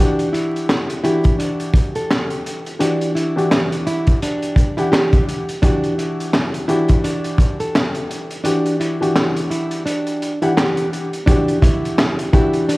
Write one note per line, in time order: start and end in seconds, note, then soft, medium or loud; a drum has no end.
0.00 0.97 E3 medium
0.00 0.29 D4 medium
0.00 0.97 D4 medium
0.00 0.97 F#4 medium
0.00 0.97 G4 loud
0.19 closed hi-hat medium
0.33 1.00 E4 medium
0.33 closed hi-hat medium
0.56 closed hi-hat medium
0.69 snare loud
0.69 clap medium
0.90 closed hi-hat medium
1.03 2.69 E3 medium
1.03 2.69 D4 medium
1.03 1.36 E4 medium
1.03 2.69 F#4 medium
1.03 2.69 G4 loud
1.03 closed hi-hat medium
1.24 kick medium
1.24 closed hi-hat medium
1.39 1.92 D4 medium
1.39 closed hi-hat medium
1.60 closed hi-hat medium
1.74 kick medium
1.74 closed hi-hat medium
1.95 2.27 A4 medium
1.95 closed hi-hat soft
2.11 snare loud
2.11 clap medium
2.30 closed hi-hat soft
2.46 closed hi-hat medium
2.66 closed hi-hat medium
2.79 3.31 E3 medium
2.79 3.31 D4 medium
2.79 3.12 D4 medium
2.79 3.31 F#4 medium
2.79 3.32 G4 loud
2.79 closed hi-hat loud
3.01 closed hi-hat medium
3.15 3.82 E4 medium
3.15 closed hi-hat medium
3.36 4.64 E3 medium
3.36 4.64 D4 medium
3.36 4.65 F#4 medium
3.36 4.65 G4 loud
3.36 closed hi-hat medium
3.51 snare loud
3.51 clap medium
3.72 closed hi-hat medium
3.87 4.18 E4 medium
3.87 closed hi-hat medium
4.07 kick medium
4.07 closed hi-hat medium
4.22 4.75 D4 medium
4.22 closed hi-hat medium
4.42 closed hi-hat medium
4.56 kick medium
4.56 closed hi-hat medium
4.77 5.41 E3 medium
4.77 5.42 D4 medium
4.77 4.90 E4 medium
4.77 5.42 G4 loud
4.77 5.42 F#5 medium
4.77 closed hi-hat soft
4.92 5.24 G4 medium
4.92 snare loud
4.92 clap medium
5.13 kick loud
5.13 closed hi-hat soft
5.29 closed hi-hat medium
5.49 closed hi-hat medium
5.62 6.61 E3 medium
5.62 5.94 D4 loud
5.62 6.62 D4 medium
5.62 6.62 F#4 medium
5.62 6.62 G4 loud
5.62 kick loud
5.62 closed hi-hat medium
5.84 closed hi-hat medium
5.98 6.65 E4 medium
5.98 closed hi-hat medium
6.20 closed hi-hat medium
6.33 snare loud
6.33 clap medium
6.54 closed hi-hat medium
6.68 8.33 E3 medium
6.68 8.33 D4 medium
6.68 7.00 E4 medium
6.68 8.34 F#4 medium
6.68 8.34 G4 loud
6.68 closed hi-hat medium
6.88 kick medium
6.88 closed hi-hat medium
7.04 7.57 D4 medium
7.04 closed hi-hat medium
7.24 closed hi-hat medium
7.38 kick medium
7.38 closed hi-hat medium
7.60 7.92 A4 medium
7.60 closed hi-hat soft
7.75 snare loud
7.75 clap medium
7.95 closed hi-hat soft
8.11 closed hi-hat medium
8.31 closed hi-hat medium
8.44 8.96 E3 medium
8.44 8.76 D4 medium
8.44 8.96 D4 medium
8.44 8.96 F#4 medium
8.44 8.96 G4 loud
8.44 closed hi-hat loud
8.66 closed hi-hat soft
8.80 9.47 E4 medium
8.80 closed hi-hat medium
9.01 10.29 E3 medium
9.01 10.29 D4 medium
9.01 10.29 F#4 medium
9.01 10.29 G4 loud
9.01 closed hi-hat medium
9.16 snare loud
9.16 clap medium
9.36 closed hi-hat medium
9.50 9.82 E4 medium
9.50 closed hi-hat medium
9.71 closed hi-hat medium
9.86 10.39 D4 medium
9.86 closed hi-hat medium
10.07 closed hi-hat medium
10.22 closed hi-hat medium
10.42 11.06 E3 medium
10.42 11.06 D4 medium
10.42 10.55 E4 medium
10.42 11.07 G4 loud
10.42 11.06 F#5 medium
10.42 closed hi-hat soft
10.57 10.89 G4 medium
10.57 snare loud
10.57 clap medium
10.77 closed hi-hat soft
10.93 closed hi-hat medium
11.13 closed hi-hat medium
11.26 12.26 E3 medium
11.26 11.58 D4 medium
11.26 12.26 D4 medium
11.26 12.27 F#4 medium
11.26 12.27 G4 loud
11.26 kick loud
11.26 closed hi-hat loud
11.48 closed hi-hat medium
11.62 12.29 E4 medium
11.62 kick loud
11.62 closed hi-hat medium
11.85 closed hi-hat medium
11.98 snare loud
11.98 clap medium
12.19 closed hi-hat medium
12.33 12.77 E3 loud
12.33 12.77 D4 medium
12.33 12.65 E4 medium
12.33 12.77 F#4 medium
12.33 12.77 G4 loud
12.33 kick loud
12.33 closed hi-hat medium
12.53 closed hi-hat medium
12.69 12.77 D4 medium
12.69 closed hi-hat medium